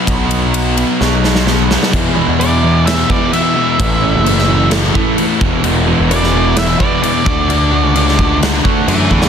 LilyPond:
<<
  \new Staff \with { instrumentName = "Lead electric guitar" } { \time 4/4 \key b \mixolydian \tempo 4 = 129 r1 | \key e \mixolydian r4 d''4 e''8 d''8 e''4~ | e''2 r2 | r4 d''4 e''8 d''8 d''4~ |
d''2 r4 <b' e''>8 <b' e''>8 | }
  \new Staff \with { instrumentName = "Clean electric guitar" } { \time 4/4 \key b \mixolydian <b, fis b dis' fis'>8 fis8 fis8 b8 fis'8 dis'8 fis8 b8 | \key e \mixolydian r8 <e gis b e'>8 r8 <e gis b e'>8 r8 <e gis b e'>8 r8 <e gis b e'>8 | r8 <e a cis' e'>8 r8 <e a cis' e'>8 r8 <e a cis' e'>8 r8 <e gis b e'>8 | r8 <e gis b e'>8 r8 <e gis b e'>8 r8 <e gis b e'>8 r8 <d a d' fis'>8 |
r8 <d a d' fis'>8 r8 <a d' fis'>8 r8 <d a d' fis'>8 r8 <d a d' fis'>8 | }
  \new Staff \with { instrumentName = "Distorted electric guitar" } { \clef bass \time 4/4 \key b \mixolydian <b, fis b>2.~ <b, fis b>8 <b, fis b>8 | \key e \mixolydian <e, b, e>8 <e, b, e>8 <e, b, e>8 <e, b, e>8 <e, b, e>8 <e, b, e>8 <e, b, e>8 <e, b, e>8 | <a, e a>8 <a, e a>8 <a, e a>8 <a, e a>8 <a, e a>8 <a, e a>8 <a, e a>8 <e, b, e>8 | <e, b, e>8 <e, b, e>8 <e, b, e>8 <e, b, e>8 <e, b, e>8 <e, b, e>8 <e, b, e>8 <d a d'>8 |
<d a d'>8 <d a d'>8 <d a d'>8 <d a d'>8 <d a d'>8 <d a d'>8 <d a d'>8 <d a d'>8 | }
  \new Staff \with { instrumentName = "Overdriven electric guitar" } { \clef bass \time 4/4 \key b \mixolydian <b, fis b>4. <b, fis b>4. <b, fis b>4 | \key e \mixolydian <e, b, e>8 <e, b, e>8 <e, b, e>8 <e, b, e>8 <e, b, e>8 <e, b, e>8 <e, b, e>8 <e, b, e>8 | <a, e a>8 <a, e a>8 <a, e a>8 <a, e a>8 <a, e a>8 <a, e a>8 <a, e a>8 <e, b, e>8 | <e, b, e>8 <e, b, e>8 <e, b, e>8 <e, b, e>8 <e, b, e>8 <e, b, e>8 <e, b, e>8 <d a d'>8 |
<d a d'>8 <d a d'>8 <d a d'>8 <d a d'>8 <d a d'>8 <d a d'>8 <d a d'>8 <d a d'>8 | }
  \new Staff \with { instrumentName = "Picked electric bass" } { \clef bass \time 4/4 \key b \mixolydian b,,2 b,,2 | \key e \mixolydian e,8. e,2 r4 r16 | a,,8. fis,,2 r8. e,,8 | e,,8. e,,2 r8. d,8~ |
d,8. cis,2 r16 fis,8 e,8 | }
  \new DrumStaff \with { instrumentName = "Drums" } \drummode { \time 4/4 <bd cymr>8 cymr8 cymr8 cymr8 sn8 sn16 sn16 sn8 sn16 sn16 | <cymc bd>4 cymc4 <cymc sn>8 bd8 cymc4 | <cymc bd>4 cymc16 sn8. <cymc sn>8 bd8 cymc8 bd8 | cymc4 cymc16 sn8. <cymc sn>8 bd8 cymc8 bd8 |
cymc4 cymc16 sn16 bd8 <cymc sn>8 bd8 cymc8 bd16 sn16 | }
>>